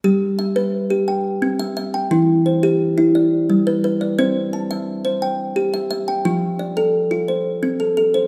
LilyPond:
\new Staff \with { instrumentName = "Kalimba" } { \time 12/8 \key g \mixolydian \tempo 4. = 116 << { g'4 e''4. r8 g''4. e''4 g''8 | e'4 c''4. r8 d''4. b'4 d''8 | c''4 a''4. r8 g''4. e''4 g''8 | f'4 d''4. r8 c''4. a'4 c''8 | } \\ { g4 r8 b'4 g'8 r4 c'4 e''4 | e4 r8 g'4 e'8 r4 g4 b'4 | c'4 r8 e''4 c''4 r8 g'4 e''4 | f4 r8 a'4 f'4 r8 c'4 a'4 | } >> }